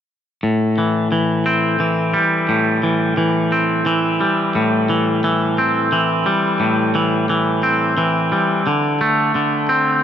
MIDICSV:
0, 0, Header, 1, 2, 480
1, 0, Start_track
1, 0, Key_signature, 0, "minor"
1, 0, Tempo, 685714
1, 307, Time_signature, 6, 3, 24, 8
1, 7025, End_track
2, 0, Start_track
2, 0, Title_t, "Clean electric guitar"
2, 0, Program_c, 0, 27
2, 302, Note_on_c, 0, 45, 38
2, 547, Note_on_c, 0, 52, 36
2, 781, Note_off_c, 0, 52, 0
2, 783, Note_on_c, 0, 52, 37
2, 1021, Note_on_c, 0, 60, 36
2, 1257, Note_off_c, 0, 52, 0
2, 1260, Note_on_c, 0, 52, 38
2, 1495, Note_on_c, 0, 55, 36
2, 1516, Note_off_c, 0, 45, 0
2, 1743, Note_on_c, 0, 45, 38
2, 1981, Note_off_c, 0, 52, 0
2, 1984, Note_on_c, 0, 52, 36
2, 2219, Note_off_c, 0, 52, 0
2, 2222, Note_on_c, 0, 52, 38
2, 2462, Note_off_c, 0, 60, 0
2, 2465, Note_on_c, 0, 60, 37
2, 2701, Note_off_c, 0, 52, 0
2, 2704, Note_on_c, 0, 52, 38
2, 2941, Note_off_c, 0, 55, 0
2, 2944, Note_on_c, 0, 55, 37
2, 2965, Note_off_c, 0, 45, 0
2, 3188, Note_on_c, 0, 45, 43
2, 3423, Note_off_c, 0, 52, 0
2, 3426, Note_on_c, 0, 52, 39
2, 3661, Note_off_c, 0, 52, 0
2, 3669, Note_on_c, 0, 52, 40
2, 3906, Note_off_c, 0, 60, 0
2, 3909, Note_on_c, 0, 60, 37
2, 4137, Note_off_c, 0, 52, 0
2, 4145, Note_off_c, 0, 55, 0
2, 4146, Note_on_c, 0, 52, 41
2, 4383, Note_on_c, 0, 55, 38
2, 4388, Note_off_c, 0, 45, 0
2, 4620, Note_on_c, 0, 45, 38
2, 4857, Note_off_c, 0, 52, 0
2, 4865, Note_on_c, 0, 52, 40
2, 5098, Note_off_c, 0, 52, 0
2, 5107, Note_on_c, 0, 52, 37
2, 5340, Note_off_c, 0, 60, 0
2, 5342, Note_on_c, 0, 60, 39
2, 5575, Note_off_c, 0, 52, 0
2, 5583, Note_on_c, 0, 52, 39
2, 5585, Note_off_c, 0, 55, 0
2, 5824, Note_off_c, 0, 45, 0
2, 5824, Note_on_c, 0, 55, 36
2, 6064, Note_off_c, 0, 52, 0
2, 6066, Note_off_c, 0, 55, 0
2, 6067, Note_on_c, 0, 50, 38
2, 6088, Note_off_c, 0, 60, 0
2, 6307, Note_on_c, 0, 57, 39
2, 6538, Note_off_c, 0, 50, 0
2, 6547, Note_on_c, 0, 50, 39
2, 6784, Note_on_c, 0, 60, 41
2, 7017, Note_off_c, 0, 50, 0
2, 7025, Note_off_c, 0, 57, 0
2, 7025, Note_off_c, 0, 60, 0
2, 7025, End_track
0, 0, End_of_file